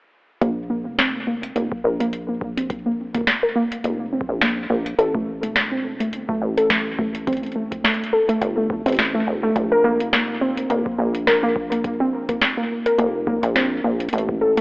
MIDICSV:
0, 0, Header, 1, 4, 480
1, 0, Start_track
1, 0, Tempo, 571429
1, 349, Time_signature, 4, 2, 24, 8
1, 12272, End_track
2, 0, Start_track
2, 0, Title_t, "Synth pluck"
2, 0, Program_c, 0, 84
2, 348, Note_on_c, 0, 58, 99
2, 393, Note_off_c, 0, 58, 0
2, 587, Note_on_c, 0, 58, 76
2, 632, Note_off_c, 0, 58, 0
2, 827, Note_on_c, 0, 60, 81
2, 902, Note_off_c, 0, 60, 0
2, 1068, Note_on_c, 0, 58, 77
2, 1113, Note_off_c, 0, 58, 0
2, 1308, Note_on_c, 0, 58, 92
2, 1382, Note_off_c, 0, 58, 0
2, 1547, Note_on_c, 0, 70, 75
2, 1592, Note_off_c, 0, 70, 0
2, 1682, Note_on_c, 0, 58, 97
2, 1717, Note_off_c, 0, 58, 0
2, 1921, Note_on_c, 0, 58, 73
2, 1957, Note_off_c, 0, 58, 0
2, 2162, Note_on_c, 0, 60, 72
2, 2221, Note_off_c, 0, 60, 0
2, 2402, Note_on_c, 0, 58, 75
2, 2438, Note_off_c, 0, 58, 0
2, 2642, Note_on_c, 0, 58, 93
2, 2701, Note_off_c, 0, 58, 0
2, 2882, Note_on_c, 0, 70, 74
2, 2917, Note_off_c, 0, 70, 0
2, 2987, Note_on_c, 0, 58, 102
2, 3032, Note_off_c, 0, 58, 0
2, 3226, Note_on_c, 0, 58, 75
2, 3272, Note_off_c, 0, 58, 0
2, 3467, Note_on_c, 0, 60, 73
2, 3542, Note_off_c, 0, 60, 0
2, 3708, Note_on_c, 0, 58, 81
2, 3753, Note_off_c, 0, 58, 0
2, 3948, Note_on_c, 0, 58, 100
2, 4022, Note_off_c, 0, 58, 0
2, 4188, Note_on_c, 0, 69, 83
2, 4233, Note_off_c, 0, 69, 0
2, 4322, Note_on_c, 0, 57, 98
2, 4357, Note_off_c, 0, 57, 0
2, 4562, Note_on_c, 0, 57, 74
2, 4597, Note_off_c, 0, 57, 0
2, 4801, Note_on_c, 0, 60, 68
2, 4860, Note_off_c, 0, 60, 0
2, 5041, Note_on_c, 0, 57, 74
2, 5077, Note_off_c, 0, 57, 0
2, 5281, Note_on_c, 0, 57, 100
2, 5340, Note_off_c, 0, 57, 0
2, 5522, Note_on_c, 0, 69, 75
2, 5558, Note_off_c, 0, 69, 0
2, 5628, Note_on_c, 0, 57, 100
2, 5673, Note_off_c, 0, 57, 0
2, 5868, Note_on_c, 0, 57, 73
2, 5913, Note_off_c, 0, 57, 0
2, 6108, Note_on_c, 0, 60, 83
2, 6183, Note_off_c, 0, 60, 0
2, 6347, Note_on_c, 0, 57, 73
2, 6392, Note_off_c, 0, 57, 0
2, 6588, Note_on_c, 0, 57, 101
2, 6662, Note_off_c, 0, 57, 0
2, 6828, Note_on_c, 0, 69, 77
2, 6873, Note_off_c, 0, 69, 0
2, 6962, Note_on_c, 0, 57, 96
2, 6997, Note_off_c, 0, 57, 0
2, 7203, Note_on_c, 0, 57, 73
2, 7238, Note_off_c, 0, 57, 0
2, 7443, Note_on_c, 0, 60, 74
2, 7501, Note_off_c, 0, 60, 0
2, 7683, Note_on_c, 0, 57, 76
2, 7718, Note_off_c, 0, 57, 0
2, 7923, Note_on_c, 0, 57, 100
2, 7981, Note_off_c, 0, 57, 0
2, 8162, Note_on_c, 0, 70, 76
2, 8198, Note_off_c, 0, 70, 0
2, 8268, Note_on_c, 0, 58, 99
2, 8313, Note_off_c, 0, 58, 0
2, 8508, Note_on_c, 0, 58, 79
2, 8553, Note_off_c, 0, 58, 0
2, 8747, Note_on_c, 0, 60, 76
2, 8822, Note_off_c, 0, 60, 0
2, 8987, Note_on_c, 0, 58, 80
2, 9032, Note_off_c, 0, 58, 0
2, 9228, Note_on_c, 0, 58, 75
2, 9339, Note_off_c, 0, 58, 0
2, 9468, Note_on_c, 0, 70, 84
2, 9513, Note_off_c, 0, 70, 0
2, 9602, Note_on_c, 0, 58, 96
2, 9637, Note_off_c, 0, 58, 0
2, 9842, Note_on_c, 0, 58, 75
2, 9877, Note_off_c, 0, 58, 0
2, 10082, Note_on_c, 0, 60, 76
2, 10141, Note_off_c, 0, 60, 0
2, 10322, Note_on_c, 0, 58, 76
2, 10358, Note_off_c, 0, 58, 0
2, 10562, Note_on_c, 0, 58, 73
2, 10650, Note_off_c, 0, 58, 0
2, 10803, Note_on_c, 0, 70, 73
2, 10838, Note_off_c, 0, 70, 0
2, 10907, Note_on_c, 0, 58, 95
2, 10952, Note_off_c, 0, 58, 0
2, 11147, Note_on_c, 0, 58, 72
2, 11192, Note_off_c, 0, 58, 0
2, 11387, Note_on_c, 0, 60, 81
2, 11462, Note_off_c, 0, 60, 0
2, 11628, Note_on_c, 0, 58, 76
2, 11673, Note_off_c, 0, 58, 0
2, 11867, Note_on_c, 0, 57, 80
2, 11979, Note_off_c, 0, 57, 0
2, 12107, Note_on_c, 0, 69, 74
2, 12152, Note_off_c, 0, 69, 0
2, 12242, Note_on_c, 0, 57, 102
2, 12272, Note_off_c, 0, 57, 0
2, 12272, End_track
3, 0, Start_track
3, 0, Title_t, "Acid bass"
3, 0, Program_c, 1, 38
3, 348, Note_on_c, 1, 34, 91
3, 723, Note_on_c, 1, 29, 88
3, 735, Note_off_c, 1, 34, 0
3, 1281, Note_off_c, 1, 29, 0
3, 1310, Note_on_c, 1, 29, 95
3, 1422, Note_off_c, 1, 29, 0
3, 1550, Note_on_c, 1, 34, 86
3, 2643, Note_on_c, 1, 29, 91
3, 2656, Note_off_c, 1, 34, 0
3, 3202, Note_off_c, 1, 29, 0
3, 3229, Note_on_c, 1, 29, 101
3, 3569, Note_off_c, 1, 29, 0
3, 3603, Note_on_c, 1, 34, 88
3, 3922, Note_off_c, 1, 34, 0
3, 3949, Note_on_c, 1, 34, 93
3, 4155, Note_off_c, 1, 34, 0
3, 4189, Note_on_c, 1, 33, 92
3, 4564, Note_on_c, 1, 28, 90
3, 4577, Note_off_c, 1, 33, 0
3, 5150, Note_on_c, 1, 31, 95
3, 5162, Note_off_c, 1, 28, 0
3, 5262, Note_off_c, 1, 31, 0
3, 5390, Note_on_c, 1, 33, 87
3, 6483, Note_on_c, 1, 28, 93
3, 6495, Note_off_c, 1, 33, 0
3, 7041, Note_off_c, 1, 28, 0
3, 7068, Note_on_c, 1, 31, 100
3, 7408, Note_off_c, 1, 31, 0
3, 7442, Note_on_c, 1, 33, 92
3, 7761, Note_off_c, 1, 33, 0
3, 7788, Note_on_c, 1, 28, 96
3, 7995, Note_off_c, 1, 28, 0
3, 8028, Note_on_c, 1, 34, 95
3, 8403, Note_on_c, 1, 29, 95
3, 8415, Note_off_c, 1, 34, 0
3, 8961, Note_off_c, 1, 29, 0
3, 8989, Note_on_c, 1, 29, 92
3, 9102, Note_off_c, 1, 29, 0
3, 9228, Note_on_c, 1, 34, 83
3, 10323, Note_on_c, 1, 29, 91
3, 10335, Note_off_c, 1, 34, 0
3, 10881, Note_off_c, 1, 29, 0
3, 10909, Note_on_c, 1, 29, 102
3, 11249, Note_off_c, 1, 29, 0
3, 11282, Note_on_c, 1, 34, 93
3, 11601, Note_off_c, 1, 34, 0
3, 11629, Note_on_c, 1, 34, 94
3, 11835, Note_off_c, 1, 34, 0
3, 11869, Note_on_c, 1, 33, 95
3, 12243, Note_on_c, 1, 28, 96
3, 12256, Note_off_c, 1, 33, 0
3, 12272, Note_off_c, 1, 28, 0
3, 12272, End_track
4, 0, Start_track
4, 0, Title_t, "Drums"
4, 348, Note_on_c, 9, 36, 99
4, 349, Note_on_c, 9, 42, 53
4, 432, Note_off_c, 9, 36, 0
4, 433, Note_off_c, 9, 42, 0
4, 829, Note_on_c, 9, 38, 113
4, 829, Note_on_c, 9, 42, 64
4, 913, Note_off_c, 9, 38, 0
4, 913, Note_off_c, 9, 42, 0
4, 1204, Note_on_c, 9, 42, 64
4, 1288, Note_off_c, 9, 42, 0
4, 1310, Note_on_c, 9, 42, 55
4, 1394, Note_off_c, 9, 42, 0
4, 1442, Note_on_c, 9, 36, 99
4, 1526, Note_off_c, 9, 36, 0
4, 1684, Note_on_c, 9, 42, 65
4, 1768, Note_off_c, 9, 42, 0
4, 1789, Note_on_c, 9, 42, 50
4, 1873, Note_off_c, 9, 42, 0
4, 2028, Note_on_c, 9, 36, 95
4, 2112, Note_off_c, 9, 36, 0
4, 2163, Note_on_c, 9, 42, 67
4, 2247, Note_off_c, 9, 42, 0
4, 2267, Note_on_c, 9, 36, 102
4, 2269, Note_on_c, 9, 42, 53
4, 2351, Note_off_c, 9, 36, 0
4, 2353, Note_off_c, 9, 42, 0
4, 2642, Note_on_c, 9, 36, 78
4, 2642, Note_on_c, 9, 42, 62
4, 2669, Note_off_c, 9, 36, 0
4, 2669, Note_on_c, 9, 36, 64
4, 2695, Note_off_c, 9, 36, 0
4, 2695, Note_on_c, 9, 36, 53
4, 2722, Note_off_c, 9, 36, 0
4, 2722, Note_on_c, 9, 36, 42
4, 2726, Note_off_c, 9, 42, 0
4, 2748, Note_on_c, 9, 38, 115
4, 2748, Note_on_c, 9, 42, 54
4, 2806, Note_off_c, 9, 36, 0
4, 2832, Note_off_c, 9, 38, 0
4, 2832, Note_off_c, 9, 42, 0
4, 3123, Note_on_c, 9, 42, 66
4, 3207, Note_off_c, 9, 42, 0
4, 3228, Note_on_c, 9, 42, 54
4, 3312, Note_off_c, 9, 42, 0
4, 3535, Note_on_c, 9, 36, 114
4, 3619, Note_off_c, 9, 36, 0
4, 3709, Note_on_c, 9, 38, 109
4, 3709, Note_on_c, 9, 42, 65
4, 3793, Note_off_c, 9, 38, 0
4, 3793, Note_off_c, 9, 42, 0
4, 4083, Note_on_c, 9, 42, 63
4, 4167, Note_off_c, 9, 42, 0
4, 4189, Note_on_c, 9, 42, 53
4, 4273, Note_off_c, 9, 42, 0
4, 4323, Note_on_c, 9, 36, 103
4, 4407, Note_off_c, 9, 36, 0
4, 4563, Note_on_c, 9, 42, 64
4, 4647, Note_off_c, 9, 42, 0
4, 4668, Note_on_c, 9, 38, 124
4, 4668, Note_on_c, 9, 42, 50
4, 4752, Note_off_c, 9, 38, 0
4, 4752, Note_off_c, 9, 42, 0
4, 5043, Note_on_c, 9, 42, 65
4, 5127, Note_off_c, 9, 42, 0
4, 5149, Note_on_c, 9, 42, 53
4, 5233, Note_off_c, 9, 42, 0
4, 5283, Note_on_c, 9, 36, 104
4, 5367, Note_off_c, 9, 36, 0
4, 5523, Note_on_c, 9, 42, 63
4, 5607, Note_off_c, 9, 42, 0
4, 5628, Note_on_c, 9, 38, 117
4, 5628, Note_on_c, 9, 42, 50
4, 5712, Note_off_c, 9, 38, 0
4, 5712, Note_off_c, 9, 42, 0
4, 5868, Note_on_c, 9, 36, 102
4, 5952, Note_off_c, 9, 36, 0
4, 6004, Note_on_c, 9, 42, 64
4, 6088, Note_off_c, 9, 42, 0
4, 6108, Note_on_c, 9, 36, 104
4, 6109, Note_on_c, 9, 42, 49
4, 6154, Note_off_c, 9, 42, 0
4, 6154, Note_on_c, 9, 42, 39
4, 6189, Note_off_c, 9, 42, 0
4, 6189, Note_on_c, 9, 42, 31
4, 6192, Note_off_c, 9, 36, 0
4, 6243, Note_off_c, 9, 42, 0
4, 6243, Note_on_c, 9, 42, 26
4, 6270, Note_off_c, 9, 42, 0
4, 6270, Note_on_c, 9, 42, 20
4, 6314, Note_off_c, 9, 42, 0
4, 6314, Note_on_c, 9, 42, 18
4, 6398, Note_off_c, 9, 42, 0
4, 6482, Note_on_c, 9, 36, 83
4, 6484, Note_on_c, 9, 42, 61
4, 6566, Note_off_c, 9, 36, 0
4, 6568, Note_off_c, 9, 42, 0
4, 6591, Note_on_c, 9, 38, 116
4, 6591, Note_on_c, 9, 42, 22
4, 6671, Note_off_c, 9, 42, 0
4, 6671, Note_on_c, 9, 42, 32
4, 6675, Note_off_c, 9, 38, 0
4, 6750, Note_off_c, 9, 42, 0
4, 6750, Note_on_c, 9, 42, 39
4, 6834, Note_off_c, 9, 42, 0
4, 6964, Note_on_c, 9, 42, 60
4, 7048, Note_off_c, 9, 42, 0
4, 7070, Note_on_c, 9, 42, 50
4, 7154, Note_off_c, 9, 42, 0
4, 7308, Note_on_c, 9, 36, 112
4, 7392, Note_off_c, 9, 36, 0
4, 7443, Note_on_c, 9, 42, 59
4, 7461, Note_off_c, 9, 42, 0
4, 7461, Note_on_c, 9, 42, 49
4, 7469, Note_off_c, 9, 42, 0
4, 7469, Note_on_c, 9, 42, 41
4, 7496, Note_off_c, 9, 42, 0
4, 7496, Note_on_c, 9, 42, 34
4, 7514, Note_off_c, 9, 42, 0
4, 7514, Note_on_c, 9, 42, 27
4, 7531, Note_off_c, 9, 42, 0
4, 7531, Note_on_c, 9, 42, 22
4, 7549, Note_on_c, 9, 38, 118
4, 7615, Note_off_c, 9, 42, 0
4, 7633, Note_off_c, 9, 38, 0
4, 8028, Note_on_c, 9, 36, 98
4, 8029, Note_on_c, 9, 42, 47
4, 8112, Note_off_c, 9, 36, 0
4, 8113, Note_off_c, 9, 42, 0
4, 8403, Note_on_c, 9, 42, 58
4, 8487, Note_off_c, 9, 42, 0
4, 8509, Note_on_c, 9, 38, 114
4, 8509, Note_on_c, 9, 42, 48
4, 8593, Note_off_c, 9, 38, 0
4, 8593, Note_off_c, 9, 42, 0
4, 8883, Note_on_c, 9, 42, 61
4, 8967, Note_off_c, 9, 42, 0
4, 8988, Note_on_c, 9, 42, 49
4, 9072, Note_off_c, 9, 42, 0
4, 9122, Note_on_c, 9, 36, 98
4, 9206, Note_off_c, 9, 36, 0
4, 9363, Note_on_c, 9, 42, 60
4, 9447, Note_off_c, 9, 42, 0
4, 9469, Note_on_c, 9, 38, 115
4, 9469, Note_on_c, 9, 42, 45
4, 9553, Note_off_c, 9, 38, 0
4, 9553, Note_off_c, 9, 42, 0
4, 9708, Note_on_c, 9, 36, 100
4, 9792, Note_off_c, 9, 36, 0
4, 9844, Note_on_c, 9, 42, 62
4, 9928, Note_off_c, 9, 42, 0
4, 9948, Note_on_c, 9, 36, 94
4, 9949, Note_on_c, 9, 42, 49
4, 10032, Note_off_c, 9, 36, 0
4, 10033, Note_off_c, 9, 42, 0
4, 10323, Note_on_c, 9, 36, 76
4, 10323, Note_on_c, 9, 42, 59
4, 10407, Note_off_c, 9, 36, 0
4, 10407, Note_off_c, 9, 42, 0
4, 10429, Note_on_c, 9, 38, 105
4, 10429, Note_on_c, 9, 42, 50
4, 10513, Note_off_c, 9, 38, 0
4, 10513, Note_off_c, 9, 42, 0
4, 10803, Note_on_c, 9, 42, 59
4, 10887, Note_off_c, 9, 42, 0
4, 10908, Note_on_c, 9, 42, 50
4, 10992, Note_off_c, 9, 42, 0
4, 11148, Note_on_c, 9, 36, 112
4, 11232, Note_off_c, 9, 36, 0
4, 11282, Note_on_c, 9, 42, 62
4, 11366, Note_off_c, 9, 42, 0
4, 11388, Note_on_c, 9, 38, 103
4, 11388, Note_on_c, 9, 42, 46
4, 11472, Note_off_c, 9, 38, 0
4, 11472, Note_off_c, 9, 42, 0
4, 11762, Note_on_c, 9, 42, 59
4, 11833, Note_off_c, 9, 42, 0
4, 11833, Note_on_c, 9, 42, 48
4, 11868, Note_off_c, 9, 42, 0
4, 11868, Note_on_c, 9, 42, 51
4, 11913, Note_off_c, 9, 42, 0
4, 11913, Note_on_c, 9, 42, 39
4, 11997, Note_off_c, 9, 42, 0
4, 12002, Note_on_c, 9, 36, 91
4, 12086, Note_off_c, 9, 36, 0
4, 12242, Note_on_c, 9, 42, 63
4, 12272, Note_off_c, 9, 42, 0
4, 12272, End_track
0, 0, End_of_file